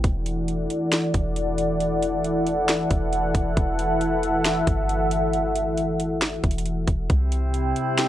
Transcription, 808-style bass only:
0.04 E1
1.14 E1
2.91 E1
3.35 E1
3.57 E1
4.67 G1
6.44 E1
6.88 E1
7.10 C2

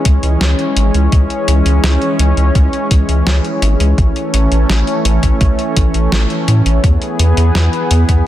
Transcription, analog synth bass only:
0.05 C#2
0.23 C#2
0.41 C#2
0.77 G#1
0.94 C#2
1.12 C#2
1.48 C#2
1.66 C#2
1.84 C#2
2.19 C#2
2.37 C#2
2.55 C#2
2.91 C#2
3.09 C#2
3.26 C#2
3.62 G#1
3.80 C#2
3.98 A1
4.34 A1
4.52 A1
4.70 A1
5.05 A1
5.23 A1
5.41 A1
5.77 A1
5.94 A1
6.12 A1
6.48 A2
6.66 A1
6.84 E2
7.19 E2
7.37 E2
7.55 E2
7.91 E2
8.09 E2

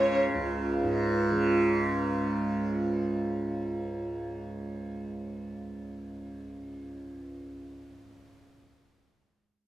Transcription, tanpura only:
Already playing: C#2 G#2 C#3
0.34 C#2
0.84 G#2
1.31 C#3

